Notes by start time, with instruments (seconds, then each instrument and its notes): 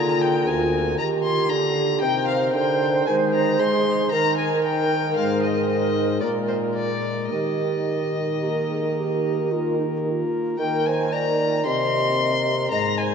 Already playing: pipe organ D3 A#3 F4 A#4, bassoon D3, flute F4, violin A#5
0.21 violin G5
0.47 pipe organ D2, bassoon D2, violin G#5
0.98 pipe organ D#3, bassoon D#3, flute G4, violin A#5
1.24 violin C6
1.49 pipe organ D3, bassoon D3, violin A#5
2.01 pipe organ C3 D#4 A#4, bassoon C3, flute C5, violin G5
2.28 violin F5
2.54 pipe organ D3, bassoon D3, violin G5
3.07 pipe organ D#3 G#3 D#4 G#4, bassoon D#3, violin G#5
3.34 violin A#5
3.59 bassoon G#3, pipe organ G#3, violin C6
4.12 pipe organ D#3 D#4 A#4, bassoon D#3, flute A#4, violin A#5
4.38 violin G#5
4.65 violin G5
5.17 pipe organ G#2 G#3 D#4 C5, bassoon G#2, violin F5
5.43 violin D#5
5.69 violin D#5
6.21 bassoon A#2, pipe organ A#2 G#3 A#3 A#4, violin D5
6.48 violin C5
6.75 violin D5
7.30 pipe organ D#3, bassoon D#3, flute G4, violin D#5
8.42 pipe organ A#3 A#4, flute G4
8.69 flute G#4
8.97 flute G4
9.52 pipe organ A#3 A#4, flute F4
9.79 flute D#4
10.07 flute F4
10.57 bassoon D#3, pipe organ D#3 A#3 A#4, flute A#4, violin G5
10.86 flute C5, violin G#5
11.12 flute D5, violin A#5
11.66 bassoon C3, pipe organ C3, flute D#5, violin C6
12.71 bassoon G#2, pipe organ G#2, flute D#5, violin A#5
12.98 flute C5, violin G#5